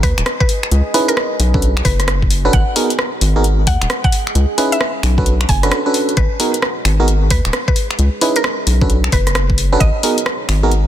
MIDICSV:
0, 0, Header, 1, 6, 480
1, 0, Start_track
1, 0, Key_signature, 5, "minor"
1, 0, Tempo, 454545
1, 756, Time_signature, 4, 2, 24, 8
1, 11479, End_track
2, 0, Start_track
2, 0, Title_t, "Synth pluck"
2, 0, Program_c, 0, 84
2, 34, Note_on_c, 0, 71, 92
2, 253, Note_off_c, 0, 71, 0
2, 426, Note_on_c, 0, 71, 92
2, 629, Note_off_c, 0, 71, 0
2, 1145, Note_on_c, 0, 70, 92
2, 1415, Note_off_c, 0, 70, 0
2, 1952, Note_on_c, 0, 71, 91
2, 2172, Note_off_c, 0, 71, 0
2, 2674, Note_on_c, 0, 78, 90
2, 2965, Note_off_c, 0, 78, 0
2, 3877, Note_on_c, 0, 78, 94
2, 4094, Note_off_c, 0, 78, 0
2, 4269, Note_on_c, 0, 78, 94
2, 4470, Note_off_c, 0, 78, 0
2, 4987, Note_on_c, 0, 76, 89
2, 5256, Note_off_c, 0, 76, 0
2, 5797, Note_on_c, 0, 80, 93
2, 6014, Note_off_c, 0, 80, 0
2, 6516, Note_on_c, 0, 71, 92
2, 6806, Note_off_c, 0, 71, 0
2, 7716, Note_on_c, 0, 71, 91
2, 7934, Note_off_c, 0, 71, 0
2, 8109, Note_on_c, 0, 71, 91
2, 8310, Note_off_c, 0, 71, 0
2, 8831, Note_on_c, 0, 70, 94
2, 9098, Note_off_c, 0, 70, 0
2, 9637, Note_on_c, 0, 71, 97
2, 9854, Note_off_c, 0, 71, 0
2, 10353, Note_on_c, 0, 75, 93
2, 10644, Note_off_c, 0, 75, 0
2, 11479, End_track
3, 0, Start_track
3, 0, Title_t, "Ambient pad"
3, 0, Program_c, 1, 92
3, 0, Note_on_c, 1, 68, 68
3, 0, Note_on_c, 1, 75, 81
3, 0, Note_on_c, 1, 82, 74
3, 516, Note_on_c, 1, 61, 83
3, 925, Note_off_c, 1, 82, 0
3, 1475, Note_on_c, 1, 59, 70
3, 1476, Note_off_c, 1, 75, 0
3, 1570, Note_on_c, 1, 66, 79
3, 1954, Note_off_c, 1, 68, 0
3, 1956, Note_off_c, 1, 61, 0
3, 2032, Note_on_c, 1, 73, 67
3, 2677, Note_on_c, 1, 68, 79
3, 2807, Note_on_c, 1, 82, 76
3, 2837, Note_on_c, 1, 75, 78
3, 3361, Note_off_c, 1, 59, 0
3, 3361, Note_off_c, 1, 66, 0
3, 3361, Note_off_c, 1, 73, 0
3, 4358, Note_on_c, 1, 61, 71
3, 4767, Note_off_c, 1, 82, 0
3, 5313, Note_on_c, 1, 59, 87
3, 5315, Note_off_c, 1, 75, 0
3, 5650, Note_on_c, 1, 66, 77
3, 5796, Note_off_c, 1, 68, 0
3, 5797, Note_off_c, 1, 61, 0
3, 5851, Note_on_c, 1, 73, 68
3, 6513, Note_on_c, 1, 68, 75
3, 6992, Note_on_c, 1, 75, 78
3, 7200, Note_off_c, 1, 59, 0
3, 7202, Note_off_c, 1, 66, 0
3, 7203, Note_off_c, 1, 73, 0
3, 7214, Note_on_c, 1, 82, 74
3, 8196, Note_on_c, 1, 61, 73
3, 8606, Note_off_c, 1, 82, 0
3, 9154, Note_on_c, 1, 59, 73
3, 9156, Note_off_c, 1, 75, 0
3, 9524, Note_on_c, 1, 73, 76
3, 9577, Note_on_c, 1, 66, 89
3, 9635, Note_off_c, 1, 68, 0
3, 9636, Note_off_c, 1, 61, 0
3, 10358, Note_on_c, 1, 68, 82
3, 10823, Note_on_c, 1, 75, 76
3, 10995, Note_off_c, 1, 59, 0
3, 11041, Note_off_c, 1, 73, 0
3, 11042, Note_off_c, 1, 66, 0
3, 11119, Note_on_c, 1, 82, 71
3, 11479, Note_off_c, 1, 68, 0
3, 11479, Note_off_c, 1, 75, 0
3, 11479, Note_off_c, 1, 82, 0
3, 11479, End_track
4, 0, Start_track
4, 0, Title_t, "FM electric piano"
4, 0, Program_c, 2, 5
4, 995, Note_on_c, 2, 61, 89
4, 995, Note_on_c, 2, 63, 81
4, 995, Note_on_c, 2, 64, 81
4, 995, Note_on_c, 2, 68, 81
4, 995, Note_on_c, 2, 71, 102
4, 1194, Note_off_c, 2, 61, 0
4, 1194, Note_off_c, 2, 63, 0
4, 1194, Note_off_c, 2, 64, 0
4, 1194, Note_off_c, 2, 68, 0
4, 1194, Note_off_c, 2, 71, 0
4, 1628, Note_on_c, 2, 61, 73
4, 1628, Note_on_c, 2, 66, 64
4, 1629, Note_on_c, 2, 62, 66
4, 1629, Note_on_c, 2, 69, 63
4, 1629, Note_on_c, 2, 71, 79
4, 1795, Note_off_c, 2, 61, 0
4, 1795, Note_off_c, 2, 62, 0
4, 1795, Note_off_c, 2, 66, 0
4, 1795, Note_off_c, 2, 69, 0
4, 1795, Note_off_c, 2, 71, 0
4, 2588, Note_on_c, 2, 61, 98
4, 2588, Note_on_c, 2, 62, 88
4, 2588, Note_on_c, 2, 66, 88
4, 2588, Note_on_c, 2, 69, 91
4, 2588, Note_on_c, 2, 71, 106
4, 2665, Note_off_c, 2, 61, 0
4, 2665, Note_off_c, 2, 62, 0
4, 2665, Note_off_c, 2, 66, 0
4, 2665, Note_off_c, 2, 69, 0
4, 2665, Note_off_c, 2, 71, 0
4, 2914, Note_on_c, 2, 59, 77
4, 2914, Note_on_c, 2, 66, 70
4, 2914, Note_on_c, 2, 68, 69
4, 2915, Note_on_c, 2, 63, 70
4, 2915, Note_on_c, 2, 70, 85
4, 3060, Note_off_c, 2, 59, 0
4, 3060, Note_off_c, 2, 66, 0
4, 3061, Note_off_c, 2, 63, 0
4, 3061, Note_off_c, 2, 68, 0
4, 3061, Note_off_c, 2, 70, 0
4, 3548, Note_on_c, 2, 59, 78
4, 3548, Note_on_c, 2, 63, 75
4, 3548, Note_on_c, 2, 66, 74
4, 3548, Note_on_c, 2, 68, 74
4, 3548, Note_on_c, 2, 70, 91
4, 3631, Note_off_c, 2, 59, 0
4, 3631, Note_off_c, 2, 63, 0
4, 3631, Note_off_c, 2, 66, 0
4, 3631, Note_off_c, 2, 68, 0
4, 3631, Note_off_c, 2, 70, 0
4, 4835, Note_on_c, 2, 68, 81
4, 4836, Note_on_c, 2, 61, 90
4, 4836, Note_on_c, 2, 63, 79
4, 4836, Note_on_c, 2, 64, 78
4, 4836, Note_on_c, 2, 71, 99
4, 5034, Note_off_c, 2, 61, 0
4, 5034, Note_off_c, 2, 63, 0
4, 5034, Note_off_c, 2, 64, 0
4, 5034, Note_off_c, 2, 68, 0
4, 5034, Note_off_c, 2, 71, 0
4, 5469, Note_on_c, 2, 61, 71
4, 5469, Note_on_c, 2, 62, 65
4, 5469, Note_on_c, 2, 66, 65
4, 5469, Note_on_c, 2, 69, 66
4, 5469, Note_on_c, 2, 71, 79
4, 5635, Note_off_c, 2, 61, 0
4, 5635, Note_off_c, 2, 62, 0
4, 5635, Note_off_c, 2, 66, 0
4, 5635, Note_off_c, 2, 69, 0
4, 5635, Note_off_c, 2, 71, 0
4, 5948, Note_on_c, 2, 61, 88
4, 5948, Note_on_c, 2, 71, 96
4, 5949, Note_on_c, 2, 62, 82
4, 5949, Note_on_c, 2, 66, 78
4, 5949, Note_on_c, 2, 69, 82
4, 6115, Note_off_c, 2, 61, 0
4, 6115, Note_off_c, 2, 62, 0
4, 6115, Note_off_c, 2, 66, 0
4, 6115, Note_off_c, 2, 69, 0
4, 6115, Note_off_c, 2, 71, 0
4, 6189, Note_on_c, 2, 61, 80
4, 6189, Note_on_c, 2, 62, 77
4, 6189, Note_on_c, 2, 66, 74
4, 6189, Note_on_c, 2, 69, 76
4, 6189, Note_on_c, 2, 71, 92
4, 6505, Note_off_c, 2, 61, 0
4, 6505, Note_off_c, 2, 62, 0
4, 6505, Note_off_c, 2, 66, 0
4, 6505, Note_off_c, 2, 69, 0
4, 6505, Note_off_c, 2, 71, 0
4, 6756, Note_on_c, 2, 59, 79
4, 6756, Note_on_c, 2, 63, 73
4, 6756, Note_on_c, 2, 66, 70
4, 6756, Note_on_c, 2, 68, 73
4, 6756, Note_on_c, 2, 70, 83
4, 6901, Note_off_c, 2, 59, 0
4, 6901, Note_off_c, 2, 63, 0
4, 6901, Note_off_c, 2, 66, 0
4, 6901, Note_off_c, 2, 68, 0
4, 6901, Note_off_c, 2, 70, 0
4, 7389, Note_on_c, 2, 70, 89
4, 7390, Note_on_c, 2, 59, 79
4, 7390, Note_on_c, 2, 63, 72
4, 7390, Note_on_c, 2, 66, 73
4, 7390, Note_on_c, 2, 68, 70
4, 7471, Note_off_c, 2, 70, 0
4, 7472, Note_off_c, 2, 59, 0
4, 7472, Note_off_c, 2, 63, 0
4, 7472, Note_off_c, 2, 66, 0
4, 7472, Note_off_c, 2, 68, 0
4, 8675, Note_on_c, 2, 61, 88
4, 8675, Note_on_c, 2, 63, 80
4, 8675, Note_on_c, 2, 64, 85
4, 8675, Note_on_c, 2, 68, 82
4, 8676, Note_on_c, 2, 71, 97
4, 8874, Note_off_c, 2, 61, 0
4, 8874, Note_off_c, 2, 63, 0
4, 8874, Note_off_c, 2, 64, 0
4, 8874, Note_off_c, 2, 68, 0
4, 8874, Note_off_c, 2, 71, 0
4, 9309, Note_on_c, 2, 61, 73
4, 9309, Note_on_c, 2, 62, 68
4, 9309, Note_on_c, 2, 66, 67
4, 9309, Note_on_c, 2, 69, 65
4, 9309, Note_on_c, 2, 71, 81
4, 9475, Note_off_c, 2, 61, 0
4, 9475, Note_off_c, 2, 62, 0
4, 9475, Note_off_c, 2, 66, 0
4, 9475, Note_off_c, 2, 69, 0
4, 9475, Note_off_c, 2, 71, 0
4, 10269, Note_on_c, 2, 61, 103
4, 10269, Note_on_c, 2, 62, 89
4, 10269, Note_on_c, 2, 66, 88
4, 10269, Note_on_c, 2, 69, 92
4, 10269, Note_on_c, 2, 71, 109
4, 10345, Note_off_c, 2, 61, 0
4, 10345, Note_off_c, 2, 62, 0
4, 10345, Note_off_c, 2, 66, 0
4, 10345, Note_off_c, 2, 69, 0
4, 10345, Note_off_c, 2, 71, 0
4, 10596, Note_on_c, 2, 59, 76
4, 10596, Note_on_c, 2, 63, 72
4, 10596, Note_on_c, 2, 66, 69
4, 10596, Note_on_c, 2, 68, 71
4, 10596, Note_on_c, 2, 70, 87
4, 10741, Note_off_c, 2, 59, 0
4, 10741, Note_off_c, 2, 63, 0
4, 10741, Note_off_c, 2, 66, 0
4, 10741, Note_off_c, 2, 68, 0
4, 10741, Note_off_c, 2, 70, 0
4, 11228, Note_on_c, 2, 59, 80
4, 11228, Note_on_c, 2, 63, 75
4, 11228, Note_on_c, 2, 66, 75
4, 11228, Note_on_c, 2, 68, 75
4, 11228, Note_on_c, 2, 70, 90
4, 11311, Note_off_c, 2, 59, 0
4, 11311, Note_off_c, 2, 63, 0
4, 11311, Note_off_c, 2, 66, 0
4, 11311, Note_off_c, 2, 68, 0
4, 11311, Note_off_c, 2, 70, 0
4, 11479, End_track
5, 0, Start_track
5, 0, Title_t, "Analog synth bass"
5, 0, Program_c, 3, 38
5, 35, Note_on_c, 3, 39, 85
5, 146, Note_off_c, 3, 39, 0
5, 188, Note_on_c, 3, 27, 83
5, 251, Note_off_c, 3, 27, 0
5, 754, Note_on_c, 3, 37, 96
5, 865, Note_off_c, 3, 37, 0
5, 1475, Note_on_c, 3, 35, 91
5, 1916, Note_off_c, 3, 35, 0
5, 1955, Note_on_c, 3, 30, 88
5, 2636, Note_off_c, 3, 30, 0
5, 2675, Note_on_c, 3, 32, 95
5, 2786, Note_off_c, 3, 32, 0
5, 3394, Note_on_c, 3, 32, 93
5, 3876, Note_on_c, 3, 39, 87
5, 3892, Note_off_c, 3, 32, 0
5, 3986, Note_off_c, 3, 39, 0
5, 4029, Note_on_c, 3, 27, 83
5, 4091, Note_off_c, 3, 27, 0
5, 4595, Note_on_c, 3, 37, 97
5, 4705, Note_off_c, 3, 37, 0
5, 5314, Note_on_c, 3, 35, 90
5, 5756, Note_off_c, 3, 35, 0
5, 5797, Note_on_c, 3, 30, 87
5, 6036, Note_off_c, 3, 30, 0
5, 6516, Note_on_c, 3, 32, 94
5, 6626, Note_off_c, 3, 32, 0
5, 7233, Note_on_c, 3, 32, 88
5, 7716, Note_on_c, 3, 39, 86
5, 7732, Note_off_c, 3, 32, 0
5, 7826, Note_off_c, 3, 39, 0
5, 7869, Note_on_c, 3, 27, 84
5, 7931, Note_off_c, 3, 27, 0
5, 8435, Note_on_c, 3, 37, 95
5, 8546, Note_off_c, 3, 37, 0
5, 9155, Note_on_c, 3, 35, 89
5, 9596, Note_off_c, 3, 35, 0
5, 9635, Note_on_c, 3, 30, 88
5, 10317, Note_off_c, 3, 30, 0
5, 10355, Note_on_c, 3, 32, 97
5, 10466, Note_off_c, 3, 32, 0
5, 11075, Note_on_c, 3, 32, 91
5, 11479, Note_off_c, 3, 32, 0
5, 11479, End_track
6, 0, Start_track
6, 0, Title_t, "Drums"
6, 35, Note_on_c, 9, 46, 89
6, 36, Note_on_c, 9, 36, 99
6, 141, Note_off_c, 9, 36, 0
6, 141, Note_off_c, 9, 46, 0
6, 188, Note_on_c, 9, 26, 57
6, 188, Note_on_c, 9, 42, 62
6, 275, Note_off_c, 9, 42, 0
6, 275, Note_on_c, 9, 37, 106
6, 275, Note_on_c, 9, 42, 60
6, 294, Note_off_c, 9, 26, 0
6, 381, Note_off_c, 9, 37, 0
6, 381, Note_off_c, 9, 42, 0
6, 429, Note_on_c, 9, 36, 103
6, 516, Note_on_c, 9, 46, 83
6, 534, Note_off_c, 9, 36, 0
6, 622, Note_off_c, 9, 46, 0
6, 668, Note_on_c, 9, 26, 50
6, 755, Note_on_c, 9, 42, 62
6, 774, Note_off_c, 9, 26, 0
6, 861, Note_off_c, 9, 42, 0
6, 995, Note_on_c, 9, 46, 97
6, 1101, Note_off_c, 9, 46, 0
6, 1149, Note_on_c, 9, 42, 62
6, 1235, Note_on_c, 9, 37, 106
6, 1255, Note_off_c, 9, 42, 0
6, 1341, Note_off_c, 9, 37, 0
6, 1474, Note_on_c, 9, 46, 85
6, 1580, Note_off_c, 9, 46, 0
6, 1629, Note_on_c, 9, 36, 94
6, 1713, Note_on_c, 9, 42, 59
6, 1734, Note_off_c, 9, 36, 0
6, 1819, Note_off_c, 9, 42, 0
6, 1867, Note_on_c, 9, 26, 60
6, 1954, Note_on_c, 9, 46, 100
6, 1956, Note_on_c, 9, 36, 96
6, 1973, Note_off_c, 9, 26, 0
6, 2060, Note_off_c, 9, 46, 0
6, 2061, Note_off_c, 9, 36, 0
6, 2108, Note_on_c, 9, 37, 55
6, 2108, Note_on_c, 9, 42, 64
6, 2194, Note_off_c, 9, 37, 0
6, 2194, Note_off_c, 9, 42, 0
6, 2194, Note_on_c, 9, 37, 109
6, 2194, Note_on_c, 9, 42, 65
6, 2300, Note_off_c, 9, 37, 0
6, 2300, Note_off_c, 9, 42, 0
6, 2349, Note_on_c, 9, 36, 57
6, 2434, Note_on_c, 9, 46, 86
6, 2455, Note_off_c, 9, 36, 0
6, 2540, Note_off_c, 9, 46, 0
6, 2673, Note_on_c, 9, 42, 63
6, 2675, Note_on_c, 9, 36, 105
6, 2779, Note_off_c, 9, 42, 0
6, 2781, Note_off_c, 9, 36, 0
6, 2914, Note_on_c, 9, 46, 103
6, 3019, Note_off_c, 9, 46, 0
6, 3067, Note_on_c, 9, 42, 64
6, 3154, Note_on_c, 9, 37, 104
6, 3172, Note_off_c, 9, 42, 0
6, 3259, Note_off_c, 9, 37, 0
6, 3393, Note_on_c, 9, 46, 88
6, 3499, Note_off_c, 9, 46, 0
6, 3635, Note_on_c, 9, 42, 62
6, 3741, Note_off_c, 9, 42, 0
6, 3874, Note_on_c, 9, 46, 101
6, 3876, Note_on_c, 9, 36, 95
6, 3980, Note_off_c, 9, 46, 0
6, 3981, Note_off_c, 9, 36, 0
6, 4029, Note_on_c, 9, 26, 59
6, 4029, Note_on_c, 9, 42, 63
6, 4117, Note_off_c, 9, 42, 0
6, 4117, Note_on_c, 9, 37, 106
6, 4117, Note_on_c, 9, 42, 66
6, 4134, Note_off_c, 9, 26, 0
6, 4223, Note_off_c, 9, 37, 0
6, 4223, Note_off_c, 9, 42, 0
6, 4269, Note_on_c, 9, 36, 100
6, 4355, Note_on_c, 9, 46, 89
6, 4375, Note_off_c, 9, 36, 0
6, 4461, Note_off_c, 9, 46, 0
6, 4510, Note_on_c, 9, 26, 52
6, 4597, Note_on_c, 9, 42, 63
6, 4615, Note_off_c, 9, 26, 0
6, 4702, Note_off_c, 9, 42, 0
6, 4836, Note_on_c, 9, 46, 104
6, 4941, Note_off_c, 9, 46, 0
6, 4989, Note_on_c, 9, 42, 63
6, 5075, Note_on_c, 9, 37, 104
6, 5094, Note_off_c, 9, 42, 0
6, 5181, Note_off_c, 9, 37, 0
6, 5315, Note_on_c, 9, 26, 54
6, 5315, Note_on_c, 9, 46, 93
6, 5420, Note_off_c, 9, 26, 0
6, 5420, Note_off_c, 9, 46, 0
6, 5469, Note_on_c, 9, 36, 96
6, 5556, Note_on_c, 9, 42, 62
6, 5575, Note_off_c, 9, 36, 0
6, 5661, Note_off_c, 9, 42, 0
6, 5710, Note_on_c, 9, 26, 64
6, 5795, Note_on_c, 9, 46, 103
6, 5796, Note_on_c, 9, 36, 94
6, 5816, Note_off_c, 9, 26, 0
6, 5900, Note_off_c, 9, 46, 0
6, 5902, Note_off_c, 9, 36, 0
6, 5948, Note_on_c, 9, 37, 54
6, 5948, Note_on_c, 9, 42, 63
6, 6035, Note_off_c, 9, 37, 0
6, 6035, Note_off_c, 9, 42, 0
6, 6035, Note_on_c, 9, 37, 109
6, 6035, Note_on_c, 9, 42, 64
6, 6141, Note_off_c, 9, 37, 0
6, 6141, Note_off_c, 9, 42, 0
6, 6275, Note_on_c, 9, 46, 88
6, 6380, Note_off_c, 9, 46, 0
6, 6428, Note_on_c, 9, 42, 35
6, 6515, Note_off_c, 9, 42, 0
6, 6515, Note_on_c, 9, 42, 61
6, 6516, Note_on_c, 9, 36, 116
6, 6620, Note_off_c, 9, 42, 0
6, 6622, Note_off_c, 9, 36, 0
6, 6755, Note_on_c, 9, 46, 106
6, 6860, Note_off_c, 9, 46, 0
6, 6908, Note_on_c, 9, 42, 62
6, 6995, Note_on_c, 9, 37, 107
6, 7013, Note_off_c, 9, 42, 0
6, 7101, Note_off_c, 9, 37, 0
6, 7235, Note_on_c, 9, 26, 55
6, 7235, Note_on_c, 9, 46, 90
6, 7340, Note_off_c, 9, 26, 0
6, 7340, Note_off_c, 9, 46, 0
6, 7475, Note_on_c, 9, 42, 60
6, 7580, Note_off_c, 9, 42, 0
6, 7714, Note_on_c, 9, 46, 106
6, 7716, Note_on_c, 9, 36, 99
6, 7819, Note_off_c, 9, 46, 0
6, 7821, Note_off_c, 9, 36, 0
6, 7868, Note_on_c, 9, 26, 64
6, 7868, Note_on_c, 9, 42, 62
6, 7954, Note_off_c, 9, 42, 0
6, 7954, Note_on_c, 9, 37, 113
6, 7954, Note_on_c, 9, 42, 61
6, 7973, Note_off_c, 9, 26, 0
6, 8059, Note_off_c, 9, 37, 0
6, 8059, Note_off_c, 9, 42, 0
6, 8109, Note_on_c, 9, 36, 105
6, 8194, Note_on_c, 9, 46, 92
6, 8215, Note_off_c, 9, 36, 0
6, 8299, Note_off_c, 9, 46, 0
6, 8348, Note_on_c, 9, 26, 54
6, 8434, Note_on_c, 9, 42, 61
6, 8454, Note_off_c, 9, 26, 0
6, 8540, Note_off_c, 9, 42, 0
6, 8674, Note_on_c, 9, 46, 101
6, 8780, Note_off_c, 9, 46, 0
6, 8826, Note_on_c, 9, 42, 59
6, 8913, Note_on_c, 9, 37, 111
6, 8932, Note_off_c, 9, 42, 0
6, 9019, Note_off_c, 9, 37, 0
6, 9154, Note_on_c, 9, 46, 87
6, 9259, Note_off_c, 9, 46, 0
6, 9309, Note_on_c, 9, 36, 108
6, 9395, Note_on_c, 9, 42, 58
6, 9414, Note_off_c, 9, 36, 0
6, 9500, Note_off_c, 9, 42, 0
6, 9548, Note_on_c, 9, 26, 65
6, 9634, Note_on_c, 9, 46, 105
6, 9635, Note_on_c, 9, 36, 100
6, 9653, Note_off_c, 9, 26, 0
6, 9740, Note_off_c, 9, 46, 0
6, 9741, Note_off_c, 9, 36, 0
6, 9788, Note_on_c, 9, 37, 59
6, 9788, Note_on_c, 9, 42, 62
6, 9875, Note_off_c, 9, 37, 0
6, 9875, Note_off_c, 9, 42, 0
6, 9875, Note_on_c, 9, 37, 118
6, 9875, Note_on_c, 9, 42, 60
6, 9980, Note_off_c, 9, 37, 0
6, 9980, Note_off_c, 9, 42, 0
6, 10029, Note_on_c, 9, 36, 64
6, 10115, Note_on_c, 9, 46, 89
6, 10134, Note_off_c, 9, 36, 0
6, 10221, Note_off_c, 9, 46, 0
6, 10355, Note_on_c, 9, 36, 118
6, 10355, Note_on_c, 9, 42, 60
6, 10461, Note_off_c, 9, 36, 0
6, 10461, Note_off_c, 9, 42, 0
6, 10595, Note_on_c, 9, 46, 99
6, 10700, Note_off_c, 9, 46, 0
6, 10748, Note_on_c, 9, 42, 60
6, 10835, Note_on_c, 9, 37, 116
6, 10854, Note_off_c, 9, 42, 0
6, 10940, Note_off_c, 9, 37, 0
6, 11075, Note_on_c, 9, 26, 56
6, 11075, Note_on_c, 9, 46, 86
6, 11180, Note_off_c, 9, 26, 0
6, 11180, Note_off_c, 9, 46, 0
6, 11315, Note_on_c, 9, 42, 58
6, 11421, Note_off_c, 9, 42, 0
6, 11479, End_track
0, 0, End_of_file